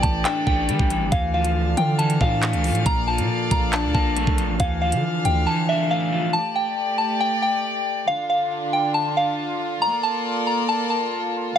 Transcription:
0.00 0.24 A1 loud
0.00 0.47 A2 medium
0.00 0.68 E3 medium
0.00 1.10 A3 medium
0.00 1.10 G4 medium
0.00 1.10 D5 medium
0.00 0.20 A5 medium
0.00 kick loud
0.00 closed hi-hat medium
0.25 1.12 D4 loud
0.25 0.42 G5 loud
0.25 clap loud
0.25 closed hi-hat medium
0.46 0.70 A1 loud
0.46 1.12 A3 medium
0.46 1.08 G5 medium
0.46 kick loud
0.69 0.79 E3 medium
0.69 1.12 G3 medium
0.69 closed hi-hat medium
0.79 1.03 A1 loud
0.79 kick loud
0.90 1.10 E3 medium
0.90 closed hi-hat medium
1.01 1.11 G1 medium
1.12 1.75 D2 loud
1.12 2.84 D3 medium
1.12 1.98 E3 medium
1.12 2.84 D4 medium
1.12 1.29 F5 medium
1.12 4.56 F5 medium
1.12 kick loud
1.12 closed hi-hat medium
1.34 2.42 F3 medium
1.34 1.75 F5 medium
1.45 closed hi-hat medium
1.77 2.19 D3 loud
1.77 1.95 G5 medium
1.77 closed hi-hat medium
1.99 2.86 E3 loud
1.99 2.16 A5 medium
1.99 closed hi-hat soft
2.10 closed hi-hat medium
2.21 2.55 A2 loud
2.21 2.86 D4 medium
2.21 2.82 F5 medium
2.21 kick loud
2.42 2.86 A3 medium
2.42 clap loud
2.42 closed hi-hat medium
2.53 2.71 C#2 loud
2.53 closed hi-hat medium
2.64 2.86 F3 medium
2.64 closed hi-hat medium
2.64 open hi-hat soft
2.70 2.85 A2 loud
2.75 closed hi-hat medium
2.86 3.20 A#1 loud
2.86 4.58 A#2 medium
2.86 3.95 A#2 medium
2.86 4.58 A4 medium
2.86 4.58 D5 medium
2.86 3.03 A#5 loud
2.86 kick loud
2.86 closed hi-hat medium
3.08 4.16 F3 medium
3.08 3.48 A5 medium
3.18 3.29 A#2 loud
3.18 closed hi-hat medium
3.51 3.85 A#1 loud
3.51 3.69 A#5 medium
3.51 kick loud
3.51 closed hi-hat medium
3.73 4.60 D4 medium
3.73 3.90 A5 medium
3.73 clap loud
3.73 closed hi-hat medium
3.84 3.94 D2 loud
3.94 4.26 A#1 loud
3.94 4.60 A#3 medium
3.94 4.56 A5 medium
3.94 kick loud
4.16 4.60 A3 medium
4.16 closed hi-hat medium
4.27 4.50 A#1 loud
4.27 kick loud
4.38 4.60 F3 medium
4.38 closed hi-hat medium
4.49 4.59 A1 loud
4.60 4.94 D2 loud
4.60 6.32 D3 medium
4.60 5.46 E3 medium
4.60 6.32 D4 medium
4.60 6.32 F5 medium
4.60 4.77 F5 loud
4.60 kick loud
4.60 closed hi-hat medium
4.81 5.90 F3 medium
4.81 5.22 F5 medium
4.92 5.03 D3 medium
4.92 closed hi-hat medium
5.25 5.46 D2 loud
5.25 5.42 G5 medium
5.25 closed hi-hat medium
5.47 6.34 E3 medium
5.47 5.64 A5 medium
5.68 6.34 D4 medium
5.68 5.86 E5 medium
5.90 6.34 A3 medium
5.90 6.31 F5 medium
6.12 6.34 F3 medium
6.33 8.06 A3 medium
6.33 8.06 G4 medium
6.33 8.06 D5 medium
6.33 6.51 A5 loud
6.56 6.96 G5 medium
6.98 7.16 A5 medium
7.20 7.38 G5 loud
7.42 8.04 G5 medium
8.07 9.80 D3 medium
8.07 9.80 D4 medium
8.07 11.58 F4 medium
8.07 8.25 F5 loud
8.30 8.70 F5 medium
8.73 8.90 G5 medium
8.94 9.12 A5 medium
9.17 9.78 F5 medium
9.82 11.54 A#3 medium
9.82 11.54 A4 medium
9.82 11.54 D5 loud
9.82 9.99 A#5 loud
10.03 10.44 A5 loud
10.47 10.64 A#5 medium
10.69 10.86 A5 loud
10.90 11.51 A5 medium

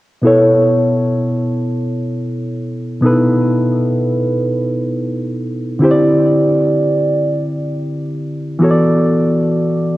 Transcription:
0.22 2.98 B2 medium
0.22 2.98 B3 medium
0.22 2.99 E4 medium
0.22 3.00 A4 medium
0.27 3.00 C#5 medium
3.01 5.77 B2 medium
3.01 5.78 B3 medium
3.01 3.10 D#4 soft
3.05 5.79 A4 medium
3.05 5.80 B4 medium
3.10 5.81 E4 soft
5.79 8.56 D3 medium
5.79 8.56 C4 medium
5.79 8.57 E4 medium
5.83 8.58 G4 medium
5.83 5.90 C5 medium
5.91 8.62 D5 medium
8.59 9.97 E3 medium
8.59 9.97 B3 medium
8.59 9.97 F#4 medium
8.63 9.97 A4 medium
8.63 8.69 C#5 medium
8.71 9.97 D5 medium

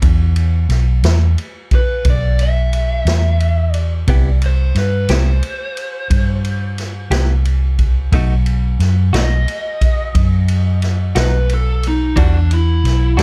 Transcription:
0.02 0.66 E2 loud
0.02 kick loud
0.02 ride medium
0.36 ride medium
0.69 1.00 B1 medium
0.69 snare soft
0.69 ride medium
1.03 1.34 E2 medium
1.03 snare medium
1.03 ride medium
1.38 ride soft
1.71 2.06 B4 medium
1.71 kick medium
1.71 ride medium
2.05 3.02 B1 medium
2.05 kick loud
2.05 ride medium
2.10 2.40 D5 medium
2.39 3.73 E5 medium
2.39 ride medium
2.73 ride medium
3.05 4.03 E2 medium
3.05 snare loud
3.05 ride medium
3.40 ride medium
3.73 4.39 D5 medium
3.73 ride medium
4.07 4.71 C2 loud
4.07 4.28 C3 medium
4.07 4.28 B3 medium
4.07 4.29 E4 medium
4.07 4.29 G4 medium
4.07 kick loud
4.07 ride medium
4.42 ride medium
4.46 4.76 C5 medium
4.75 5.06 G2 medium
4.75 5.10 B4 medium
4.75 snare soft
4.75 ride medium
5.09 5.40 C2 medium
5.09 5.31 C3 medium
5.09 5.30 B3 medium
5.09 5.30 E4 medium
5.09 5.30 G4 medium
5.09 snare loud
5.09 ride medium
5.13 7.09 C5 medium
5.43 ride medium
5.77 ride medium
6.10 7.07 G2 medium
6.10 kick loud
6.10 ride medium
6.45 ride medium
6.78 snare soft
6.78 ride medium
7.10 8.08 C2 medium
7.10 7.33 C3 medium
7.10 7.32 B3 medium
7.10 7.32 E4 medium
7.10 7.31 G4 medium
7.10 snare loud
7.10 ride medium
7.45 ride medium
7.79 kick medium
7.79 ride medium
8.12 8.76 B1 loud
8.12 8.33 B2 medium
8.12 8.33 A3 medium
8.12 8.34 D#4 medium
8.12 8.34 F#4 medium
8.12 kick loud
8.12 ride medium
8.46 ride medium
8.79 9.11 F#2 medium
8.79 snare soft
8.79 ride medium
9.13 9.44 B1 medium
9.13 9.35 B2 medium
9.13 9.35 A3 medium
9.13 9.34 D#4 medium
9.13 9.34 F#4 medium
9.13 snare loud
9.13 ride medium
9.18 11.14 D#5 medium
9.48 ride medium
9.81 kick medium
9.81 ride medium
10.15 11.12 F#2 medium
10.15 kick medium
10.15 ride medium
10.48 ride medium
10.82 snare soft
10.82 ride medium
11.15 12.13 B1 medium
11.15 11.37 B2 medium
11.15 11.37 A3 medium
11.15 11.37 D#4 medium
11.15 11.36 F#4 medium
11.15 11.51 B4 medium
11.15 snare loud
11.15 ride medium
11.49 ride medium
11.54 11.85 A4 medium
11.83 ride medium
11.88 12.19 D#4 medium
12.16 12.81 E2 loud
12.16 12.37 E3 medium
12.16 12.37 G3 medium
12.16 12.38 D4 medium
12.16 12.38 F#4 medium
12.16 kick loud
12.16 ride medium
12.20 12.52 D4 loud
12.51 13.23 E4 medium
12.51 ride medium
12.84 13.15 B1 medium
12.84 snare soft
12.84 ride medium
13.17 13.23 E2 medium
13.17 13.23 E3 medium
13.17 13.23 G3 medium
13.17 13.23 D4 medium
13.17 13.23 F#4 medium
13.17 snare loud
13.17 ride medium

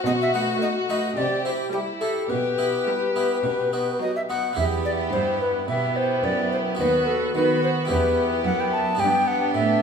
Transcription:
0.00 1.13 F#4 medium
0.06 0.49 B2 soft
0.06 0.50 B2 medium
0.06 0.12 D#5 medium
0.22 0.34 E5 medium
0.34 0.74 A3 soft
0.34 0.74 D#4 soft
0.34 0.74 B4 soft
0.34 0.40 F#5 medium
0.62 1.03 A3 medium
0.62 1.03 D#4 soft
0.62 0.68 D#5 medium
0.89 1.09 A3 soft
0.89 1.09 D#4 soft
0.89 1.10 B4 soft
0.89 1.19 D#5 medium
1.16 1.61 C3 medium
1.16 1.60 C3 soft
1.16 1.71 G4 medium
1.16 1.44 D5 medium
1.44 1.86 E4 soft
1.44 1.86 G4 soft
1.44 1.51 C5 medium
1.73 2.15 G3 soft
1.73 2.29 E4 medium
1.73 2.15 E4 soft
1.73 1.79 G4 medium
2.01 2.22 E4 soft
2.01 2.22 G4 soft
2.01 2.31 A4 medium
2.30 2.75 B2 medium
2.30 2.75 B2 soft
2.30 4.26 G4 medium
2.30 4.00 B4 medium
2.58 2.99 B3 soft
2.58 3.00 E4 soft
2.58 3.00 G4 soft
2.87 3.29 G3 soft
2.87 3.30 E4 soft
3.16 3.36 B3 soft
3.16 3.37 E4 soft
3.16 3.37 G4 soft
3.44 3.88 B2 soft
3.44 3.89 B2 medium
3.73 4.14 B3 soft
3.73 4.14 D#4 soft
3.73 4.14 F#4 soft
4.01 4.43 F#3 soft
4.01 4.43 D#4 soft
4.01 4.14 D#5 medium
4.16 4.22 E5 medium
4.29 4.50 B3 soft
4.29 4.50 D#4 soft
4.29 4.50 F#4 soft
4.29 4.57 F#5 medium
4.53 6.18 B3 soft
4.53 6.74 E4 soft
4.53 6.75 G4 soft
4.57 5.09 E2 medium
4.57 5.09 E2 soft
4.57 5.64 B3 soft
4.57 5.65 E4 soft
4.57 5.64 G4 soft
4.57 4.64 E5 medium
4.85 4.91 D5 medium
5.12 5.64 G2 medium
5.12 5.64 G2 soft
5.12 5.40 C5 medium
5.41 5.68 B4 medium
5.68 6.20 B2 soft
5.68 6.77 B3 soft
5.68 6.77 E4 soft
5.68 6.77 G4 soft
5.68 5.98 E5 medium
5.96 6.26 C5 medium
6.24 6.75 F#2 soft
6.24 6.76 F#2 medium
6.24 6.51 D5 medium
6.52 6.58 C5 medium
6.75 7.84 B3 soft
6.75 7.85 F#4 soft
6.79 7.31 D#2 medium
6.79 7.31 D#2 soft
6.79 7.34 B3 soft
6.79 7.33 F#4 soft
6.79 7.34 F#4 soft
6.79 7.09 B4 medium
7.07 7.35 A4 medium
7.34 7.86 D#3 medium
7.34 7.86 D#3 soft
7.34 7.88 B3 soft
7.34 7.89 F#4 soft
7.34 7.62 B4 medium
7.64 7.70 C5 medium
7.85 8.41 B3 soft
7.85 8.95 E4 soft
7.85 8.96 G4 soft
7.89 8.41 E2 medium
7.89 8.41 E2 soft
7.89 8.98 B3 soft
7.89 9.00 E4 soft
7.89 8.98 G4 soft
7.89 8.44 B4 medium
8.45 8.96 F#2 medium
8.45 8.96 F#2 soft
8.45 8.62 F#5 medium
8.60 8.72 G5 medium
8.72 9.01 A5 medium
8.95 9.51 B3 soft
8.95 9.52 D4 soft
8.95 9.82 G4 soft
8.99 9.51 G2 soft
8.99 9.51 G2 medium
8.99 9.82 B3 medium
8.99 9.82 D4 medium
8.99 9.82 G4 medium
8.99 9.29 G5 medium
9.27 9.54 F#5 medium
9.55 9.82 A2 soft
9.55 9.82 A2 medium
9.55 9.82 E5 medium

